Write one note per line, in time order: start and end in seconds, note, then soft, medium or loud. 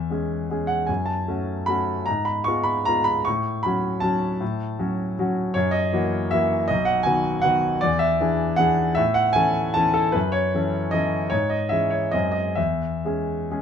0.00 0.91 E2 soft
0.00 0.49 E5 medium
0.10 0.46 G#3 soft
0.10 0.46 C#4 soft
0.10 0.47 G#4 soft
0.50 0.85 G#3 soft
0.50 0.85 C#4 soft
0.50 0.86 G#4 soft
0.67 0.88 F#5 medium
0.87 1.27 F#2 soft
0.87 1.07 G#5 medium
1.06 1.67 A5 medium
1.28 1.65 A3 soft
1.28 1.65 C#4 soft
1.28 1.65 F#4 soft
1.66 2.04 A3 soft
1.66 2.04 C#4 soft
1.66 2.04 F#4 soft
1.66 2.07 B5 medium
2.06 2.45 G#2 soft
2.06 2.26 A#5 medium
2.25 2.45 B5 medium
2.44 2.83 G#3 soft
2.44 2.83 B3 soft
2.44 2.83 F4 soft
2.44 2.65 C#6 medium
2.64 2.85 B5 medium
2.85 3.23 G#3 soft
2.85 3.23 B3 soft
2.85 3.23 F4 soft
2.85 3.06 A#5 medium
3.04 3.25 B5 medium
3.25 3.63 A2 medium
3.25 3.63 C#6 medium
3.63 3.99 F#3 soft
3.63 3.99 C#4 soft
3.63 4.00 F#4 soft
3.63 4.02 B5 medium
4.00 4.38 F#3 soft
4.00 4.38 C#4 soft
4.00 4.38 F#4 soft
4.00 5.17 A5 medium
4.41 4.77 A2 soft
4.79 5.14 F#3 soft
4.79 5.14 C#4 soft
4.79 5.14 F#4 soft
5.19 5.52 F#3 soft
5.19 5.52 C#4 soft
5.19 5.53 F#4 soft
5.54 5.92 F#2 medium
5.54 5.73 C#5 medium
5.71 6.30 D#5 medium
5.93 6.28 E3 soft
5.93 6.28 A#3 soft
5.93 6.28 F#4 soft
6.31 6.66 E3 soft
6.31 6.66 A#3 soft
6.31 6.66 F#4 medium
6.31 6.68 E5 medium
6.68 7.05 B1 medium
6.68 6.86 D#5 medium
6.85 7.05 F#5 medium
7.03 7.40 D#3 soft
7.03 7.40 B3 soft
7.03 7.40 F#4 soft
7.03 7.43 G#5 medium
7.42 7.80 D#3 medium
7.42 7.80 B3 soft
7.42 7.80 F#4 soft
7.42 7.82 F#5 medium
7.81 8.20 E2 medium
7.81 8.01 D5 medium
7.99 8.58 E5 medium
8.21 8.55 E3 soft
8.21 8.56 D4 soft
8.21 8.56 G#4 soft
8.56 8.94 E3 soft
8.56 8.94 D4 soft
8.56 8.94 G#4 medium
8.56 8.97 F#5 medium
8.95 9.35 A2 medium
8.95 9.15 E5 medium
9.14 9.35 F#5 medium
9.33 9.72 E3 soft
9.33 9.72 C#4 soft
9.33 9.72 A4 medium
9.33 9.74 G#5 loud
9.74 10.11 E3 medium
9.74 10.11 C#4 soft
9.74 9.92 A4 soft
9.74 9.95 A5 loud
9.94 10.14 A4 medium
10.12 10.52 F#2 medium
10.12 10.33 B4 medium
10.32 10.91 C#5 medium
10.54 10.89 E3 soft
10.54 10.89 C#4 soft
10.54 10.90 A4 soft
10.91 11.29 E3 soft
10.91 11.29 C#4 soft
10.91 11.29 A4 soft
10.91 11.32 D#5 medium
11.30 11.70 G#2 medium
11.30 11.50 C#5 medium
11.50 11.71 D#5 medium
11.69 12.09 E3 soft
11.69 12.09 C#4 soft
11.69 12.09 G#4 soft
11.69 11.91 E5 medium
11.90 12.12 C#5 medium
12.12 12.56 F#2 medium
12.12 12.54 G#3 soft
12.12 12.54 C4 soft
12.12 12.54 G#4 soft
12.12 12.30 D#5 medium
12.32 12.56 D#5 medium
12.55 13.02 E2 soft
12.55 13.62 E5 medium
13.05 13.47 G#3 soft
13.05 13.48 C#4 soft
13.05 13.48 G#4 soft
13.51 13.62 G#3 soft
13.51 13.62 C#4 soft
13.51 13.62 G#4 soft